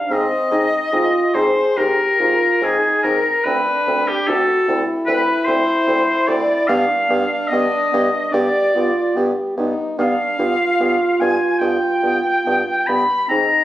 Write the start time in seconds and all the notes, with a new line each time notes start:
Already playing: F5
0.09 G#2 C4 D#5
0.51 G#2 C4 D#4
0.92 G#2 C4 F4
1.34 G#2 C4 G#4 C5
1.76 G#2 C4 G4 A#4
2.19 G#2 C4 F4
2.61 G#2 C4 D#4 G#4
3.03 G#2 C4 A#4
3.43 D2 C4 D4 B4
3.48 B4
3.87 D2 C4
4.08 G4
4.27 D2 C4 F#4 A4
4.68 D2 C4 E4
5.06 D2 C4 B4
5.45 D2 C4 C5
5.87 D2 C4
6.27 D2 C4 D5
6.67 G2 B3 D4 F5
7.09 G2 B3
7.48 B3 D#5
7.52 G2
7.92 G2 B3
8.32 G2 B3 G4 D5
8.74 G2 B3 F4
9.15 G2 B3 G4
9.57 G2 B3 D#4
9.98 G2 B3 D4 F5
10.39 G2 B3 F4
10.80 G2 B3
11.19 G2 B3 G#5
11.59 G2 B3 G5
12.03 G2 B3
12.45 G2 B3
12.87 G2 B3 B5
13.28 G#2 C4 D#4 A#5